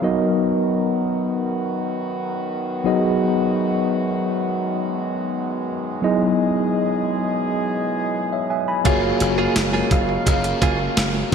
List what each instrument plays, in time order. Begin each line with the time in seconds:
Already playing: french horn section F#3 A#4
0.02 french horn section F#2 D#3 B3 F#4, tine electric piano F#3 B3 D#4 F#4 A#4 D#5
2.84 tine electric piano F#3 B3 D#4 F#4 G#4 D#5, french horn section G#3
6.02 french horn section B2 E3 G#4 D#5, tine electric piano F#3 B3 D#4 E4 G#4 D#5
8.33 tine electric piano C#5 E5
8.50 tine electric piano E5 G#5
8.68 tine electric piano G#5 B5
8.84 slap bass F#1, overdriven electric guitar F#2 C#3 F#3, french horn section C#3 F#3 G#3 A#4 F5, tine electric piano A#3 F4 F#4 G#4 C#5, clean electric guitar A#3 F4 G#4, kick, closed hi-hat
9.03 muted clean electric guitar stroke
9.20 slap bass F#1, overdriven electric guitar C#3 F#3, muted clean electric guitar stroke, closed hi-hat
9.38 clean electric guitar A#3 F4 G#4
9.56 slap bass F#1, snare, closed hi-hat, tambourine
9.73 clean electric guitar A#3 F4 G#4
9.91 slap bass F#1, muted clean electric guitar stroke, kick, closed hi-hat
10.09 muted clean electric guitar stroke
10.26 slap bass F#1, overdriven electric guitar F#2 C#3 F#3, muted clean electric guitar stroke, kick, closed hi-hat
10.44 muted clean electric guitar stroke, closed hi-hat
10.62 slap bass F#1, clean electric guitar A#3 F4 G#4, kick, closed hi-hat
10.80 muted clean electric guitar stroke
10.97 slap bass F#1, muted clean electric guitar stroke, snare, closed hi-hat, tambourine
11.15 muted clean electric guitar stroke
11.31 tine electric piano B3 D#4